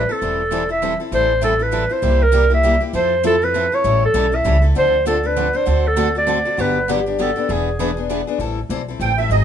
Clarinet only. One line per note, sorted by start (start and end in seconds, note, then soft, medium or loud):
0.00 0.13 B4 medium
0.12 0.71 A4 medium
0.71 0.99 E5 medium
1.14 1.42 C5 loud
1.44 1.64 A4 medium
1.63 1.94 B4 medium
1.92 2.24 C5 loud
2.23 2.52 A#4 loud
2.54 2.81 E5 medium
2.96 3.23 C5 loud
3.26 3.45 A4 loud
3.44 3.76 B4 medium
3.74 4.04 C#5 loud
4.05 4.36 A4 medium
4.35 4.64 E5 medium
4.78 5.05 C5 loud
5.07 5.28 A4 medium
5.26 5.58 B4 medium
5.56 5.89 C5 loud
5.87 6.16 A4 medium
6.18 6.62 D5 medium
6.61 6.90 B4 medium
6.92 7.23 G4 medium
7.22 7.54 A4 medium
7.53 8.11 G#4 medium